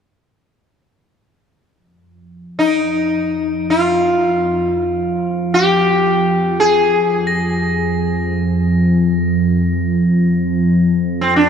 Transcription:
1.76 ambient pad F2 F3
2.59 sitar D#4
2.68 crotales D7
3.70 sitar F4
5.54 sitar G4
6.60 sitar G#4
7.27 crotales A#6
11.21 sitar C4
11.36 sitar D4

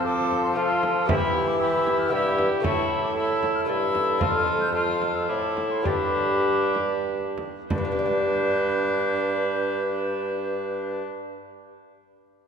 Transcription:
Already playing: lute F3 A3 F4 C5, bassoon F3, viola C4
0.04 cor anglais A4, flute D6
0.31 frame drum
0.44 flute C6
0.54 lute A3 F4 C5, viola F4, cor anglais A4, flute C6
0.83 frame drum
1.05 lute E3 B3 G4 E5, viola E4, flute B5, frame drum
1.09 bassoon E3, cor anglais G4
1.48 flute D6
1.60 viola E4, cor anglais G4, flute E6
1.87 frame drum
1.99 flute F6
2.08 lute G2 B3 G4 E5, flute E6
2.13 bassoon G2, viola E4, cor anglais G4
2.39 frame drum
2.60 lute A2 A3 A4 E5, flute C#6
2.64 bassoon A2, viola E4, cor anglais A4, frame drum
3.03 flute D6
3.16 viola E4, cor anglais A4, flute E6
3.43 frame drum
3.55 flute F6
3.65 lute G2 A3 A4 E5, viola E4, cor anglais A4, flute E6
3.69 bassoon G2
3.95 frame drum
4.18 bassoon F2, lute F2 C4 A4 F5, viola F4, cor anglais A4, flute F6, frame drum
4.61 flute G6
4.73 viola F4, cor anglais A4, flute F6
5.02 frame drum
5.15 flute E6
5.28 bassoon A2, lute A2, viola E4, flute D6
5.57 frame drum
5.71 flute C6
5.82 bassoon G2, lute G2 B3 G4 D5, viola D4, cor anglais G4, flute B5, frame drum
6.75 frame drum
7.38 frame drum
7.69 lute G2, bassoon G2, viola D4, cor anglais B4, flute G6, frame drum
7.78 lute G3
7.85 lute B3
7.92 lute G4
7.99 lute D5
8.06 lute G5

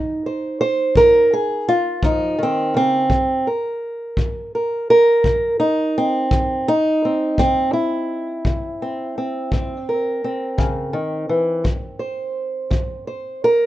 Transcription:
Already playing: steel-string acoustic guitar F3 D#4
0.26 steel-string acoustic guitar C5
0.61 steel-string acoustic guitar C5
0.95 steel-string acoustic guitar F3 A#4, kick
1.33 steel-string acoustic guitar G#4
1.69 steel-string acoustic guitar F4
2.03 steel-string acoustic guitar F3 D#4, kick
2.38 steel-string acoustic guitar D#3
2.43 steel-string acoustic guitar C4
2.74 steel-string acoustic guitar C#3 C4
3.10 steel-string acoustic guitar C3, kick
3.47 steel-string acoustic guitar A#4
4.17 steel-string acoustic guitar C3, kick
4.55 steel-string acoustic guitar A#4
4.90 steel-string acoustic guitar A#4
5.24 steel-string acoustic guitar C3, kick
5.60 steel-string acoustic guitar D#4
5.98 steel-string acoustic guitar C4
6.31 steel-string acoustic guitar C3, kick
6.68 steel-string acoustic guitar D#4
7.05 steel-string acoustic guitar C4
7.38 steel-string acoustic guitar C3 C4, kick
7.73 steel-string acoustic guitar E4
8.45 steel-string acoustic guitar C3, kick
8.82 steel-string acoustic guitar C4
9.18 steel-string acoustic guitar C4
9.52 steel-string acoustic guitar C3 C4, kick
9.89 steel-string acoustic guitar A#4
10.24 steel-string acoustic guitar C4
10.58 steel-string acoustic guitar C#3, kick
10.93 steel-string acoustic guitar D#3
11.29 steel-string acoustic guitar E3
11.64 steel-string acoustic guitar F3, kick
11.99 steel-string acoustic guitar C5
12.71 steel-string acoustic guitar F3, kick
13.07 steel-string acoustic guitar C5
13.44 steel-string acoustic guitar A#4

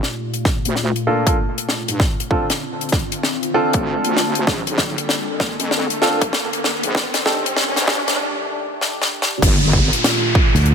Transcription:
Already playing: ambient pad A#2 A3 F4, riser
0.03 snare
0.34 closed hi-hat
0.45 kick, snare
0.65 wobble bass D2, closed hi-hat
0.76 snare
0.96 closed hi-hat
1.07 grand piano A#3 D4 F4 A4
1.27 grand piano A#3 D4 F4 A4, kick, closed hi-hat
1.58 closed hi-hat
1.69 snare
1.88 wobble bass G2, closed hi-hat
2.00 ambient pad D3 C4 F4, kick, snare
2.20 closed hi-hat
2.31 grand piano C4 D4 F4 A4, kick
2.50 snare, closed hi-hat
2.81 closed hi-hat
2.89 kick, snare, closed hi-hat
2.99 closed hi-hat
3.12 closed hi-hat
3.23 snare
3.43 closed hi-hat
3.54 grand piano C4 D4 F4 A4
3.73 wobble bass D2, kick, closed hi-hat
4.04 wobble bass D2, closed hi-hat
4.17 snare
4.35 wobble bass D2, closed hi-hat
4.47 wobble bass A#1, ambient pad A#3 A4, kick, snare
4.67 closed hi-hat
4.78 kick, snare
4.98 closed hi-hat
5.09 snare
5.40 kick, snare
5.60 wobble bass F2, closed hi-hat
5.71 snare
5.90 closed hi-hat
6.02 grand piano C4 D4 F4 A4, snare
6.21 kick, closed hi-hat
6.33 snare
6.53 closed hi-hat
6.64 snare
6.83 wobble bass A#1, closed hi-hat
6.95 ambient pad D#3 A3 D4 G4, kick, snare
7.14 snare, closed hi-hat
7.26 grand piano D4 D#4 G4 A4, kick, snare
7.46 closed hi-hat
7.57 snare
7.76 wobble bass A1, snare, closed hi-hat
7.88 kick, snare
8.08 snare, closed hi-hat
8.81 snare
9.02 snare
9.22 snare
9.42 wobble bass G1, ambient pad A#2 A3 F4, kick, closed hi-hat, crash, downlifter
9.73 kick
9.93 closed hi-hat
10.04 snare, closed hi-hat
10.35 kick
10.55 fingered electric bass D2, snare, closed hi-hat
10.66 closed hi-hat

